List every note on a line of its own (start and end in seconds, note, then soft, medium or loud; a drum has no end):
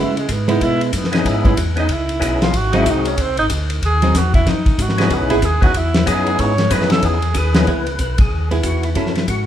0.00 0.27 C#3 medium
0.00 0.13 G#3 medium
0.00 0.14 B3 medium
0.00 0.14 E4 medium
0.00 0.18 E4 medium
0.17 0.34 G#3 medium
0.17 ride soft
0.29 0.60 G#2 medium
0.29 0.50 B3 medium
0.29 kick soft
0.29 hi-hat pedal medium
0.29 ride medium
0.48 0.90 G#3 medium
0.48 0.90 B3 medium
0.48 0.65 D#4 medium
0.48 0.91 E4 medium
0.48 ride medium
0.61 0.92 B2 medium
0.61 0.82 E4 loud
0.61 kick soft
0.61 ride medium
0.81 0.99 G#3 medium
0.81 ride soft
0.93 1.24 F#2 medium
0.93 kick soft
0.93 hi-hat pedal medium
0.93 ride medium
0.97 1.14 B3 medium
1.04 snare soft
1.12 1.54 B3 medium
1.12 1.54 C#4 medium
1.12 1.55 D#4 medium
1.12 1.30 D#4 medium
1.12 1.55 E4 medium
1.12 1.55 G#4 medium
1.12 snare soft
1.12 ride soft
1.25 1.56 G#2 medium
1.25 1.59 E4 medium
1.25 kick soft
1.25 ride medium
1.45 1.56 G#3 medium
1.45 1.56 B3 medium
1.45 1.57 E4 medium
1.45 kick medium
1.45 ride soft
1.57 1.88 E2 medium
1.57 kick soft
1.57 hi-hat pedal medium
1.57 ride medium
1.76 1.87 B3 medium
1.76 1.88 C#4 medium
1.76 1.88 D#4 medium
1.76 1.94 D#4 medium
1.76 1.88 E4 medium
1.76 1.88 G#4 medium
1.76 ride soft
1.89 2.20 C#2 medium
1.89 2.44 E4 loud
1.89 kick soft
1.89 ride medium
2.09 ride soft
2.20 2.52 B1 medium
2.20 2.53 B3 medium
2.20 2.53 C#4 medium
2.20 2.53 D#4 medium
2.20 2.53 E4 medium
2.20 2.53 G#4 medium
2.20 kick soft
2.20 hi-hat pedal medium
2.20 ride medium
2.42 2.58 F4 medium
2.42 snare soft
2.42 ride soft
2.53 2.84 G#1 medium
2.53 2.78 F#4 loud
2.53 kick soft
2.53 ride medium
2.72 2.84 F#3 medium
2.72 3.15 G#3 medium
2.72 3.15 C4 medium
2.72 2.85 C4 medium
2.72 3.15 D#4 medium
2.72 2.85 D#4 medium
2.72 3.15 F#4 medium
2.72 3.15 G#4 medium
2.72 ride medium
2.77 2.92 E4 loud
2.86 3.17 C2 medium
2.86 kick soft
2.86 hi-hat pedal medium
2.86 ride medium
2.91 3.07 D#4 medium
3.05 3.23 C#4 medium
3.05 ride medium
3.17 3.28 C#2 medium
3.17 kick soft
3.17 ride medium
3.22 3.39 C4 loud
3.28 3.39 C2 medium
3.37 3.49 G#1 medium
3.37 3.46 D#4 loud
3.37 ride soft
3.50 3.81 D2 medium
3.50 kick soft
3.50 hi-hat pedal medium
3.50 ride medium
3.70 ride medium
3.82 4.13 D#2 medium
3.82 4.19 G#4 medium
3.82 kick soft
3.82 ride medium
4.02 4.13 F#3 medium
4.02 4.14 C4 medium
4.02 4.14 D#4 medium
4.02 ride medium
4.14 4.45 E2 loud
4.14 4.34 F#4 medium
4.14 kick soft
4.14 snare soft
4.14 hi-hat pedal medium
4.14 ride medium
4.34 4.51 E4 medium
4.34 kick medium
4.34 ride medium
4.46 4.64 F#2 medium
4.46 4.84 D#4 medium
4.46 kick soft
4.46 snare soft
4.46 ride medium
4.66 4.72 F#2 soft
4.66 kick medium
4.66 ride soft
4.78 5.09 G#2 medium
4.78 kick soft
4.78 hi-hat pedal medium
4.78 ride medium
4.82 5.16 F#4 medium
4.89 snare soft
4.98 5.40 B3 medium
4.98 5.40 C#4 medium
4.98 5.40 D#4 medium
4.98 5.40 E4 medium
4.98 5.40 G#4 medium
4.98 snare soft
4.98 ride soft
5.10 5.20 C#2 medium
5.10 kick soft
5.10 ride medium
5.15 5.47 B4 loud
5.21 5.32 B1 medium
5.30 5.41 G#1 medium
5.30 5.41 B3 medium
5.30 5.41 E4 medium
5.30 5.42 G#4 medium
5.30 ride medium
5.42 5.60 D#2 medium
5.42 5.63 G#4 medium
5.42 kick soft
5.42 hi-hat pedal medium
5.42 ride medium
5.61 5.68 D#2 soft
5.61 5.73 B3 medium
5.61 5.73 C#4 medium
5.61 5.73 D#4 medium
5.61 5.73 E4 medium
5.61 5.79 F#4 loud
5.61 5.74 G#4 medium
5.61 kick medium
5.61 ride medium
5.74 6.05 E2 medium
5.74 6.09 E4 medium
5.74 kick soft
5.74 ride medium
5.94 snare medium
5.94 ride soft
6.06 6.38 F#2 medium
6.06 6.54 B3 medium
6.06 6.54 C#4 medium
6.06 6.54 D#4 medium
6.06 6.54 E4 medium
6.06 6.55 G#4 medium
6.06 6.42 G#4 medium
6.06 kick soft
6.06 hi-hat pedal medium
6.06 ride medium
6.27 ride soft
6.39 6.70 G#2 loud
6.39 6.74 C#5 loud
6.39 kick soft
6.39 ride medium
6.58 snare soft
6.58 ride soft
6.70 7.02 F#2 loud
6.70 7.18 B3 medium
6.70 7.19 C#4 medium
6.70 7.18 D#4 medium
6.70 7.19 E4 medium
6.70 7.19 G#4 medium
6.70 6.91 B4 loud
6.70 kick soft
6.70 hi-hat pedal soft
6.70 ride medium
6.81 snare soft
6.90 7.07 A4 medium
6.90 snare medium
6.90 ride soft
7.03 7.34 E2 medium
7.03 7.39 G#4 medium
7.03 kick soft
7.03 ride medium
7.22 ride soft
7.34 7.66 D#2 medium
7.34 7.55 G#4 loud
7.34 7.62 B4 medium
7.34 kick soft
7.34 hi-hat pedal medium
7.34 ride medium
7.54 7.66 B3 medium
7.54 7.66 C#4 medium
7.54 7.66 D#4 medium
7.54 7.67 E4 medium
7.54 7.67 G#4 medium
7.54 8.00 B4 loud
7.54 snare medium
7.54 ride medium
7.67 7.98 C#2 medium
7.67 7.85 B3 medium
7.67 7.85 E4 medium
7.67 7.85 G#4 medium
7.67 kick soft
7.67 ride soft
7.87 ride soft
7.99 8.30 B1 medium
7.99 8.18 B4 medium
7.99 kick soft
7.99 hi-hat pedal medium
7.99 ride medium
8.18 8.49 G#4 medium
8.18 kick medium
8.18 ride medium
8.30 8.62 D#2 medium
8.51 8.93 B3 soft
8.51 8.94 E4 medium
8.51 8.94 G#4 medium
8.51 ride soft
8.63 8.94 E2 medium
8.63 8.85 F#4 medium
8.63 kick soft
8.63 hi-hat pedal medium
8.63 ride medium
8.83 8.90 E4 medium
8.83 ride soft
8.95 9.27 F#2 medium
8.95 9.13 F#3 medium
8.95 9.13 C#4 medium
8.95 9.13 E4 medium
8.95 9.14 A4 medium
8.95 kick soft
8.95 ride medium
9.06 snare soft
9.15 9.26 E4 medium
9.15 snare soft
9.15 ride soft
9.28 9.46 G#2 medium
9.28 9.46 F#4 medium
9.28 kick soft
9.28 hi-hat pedal soft
9.28 ride medium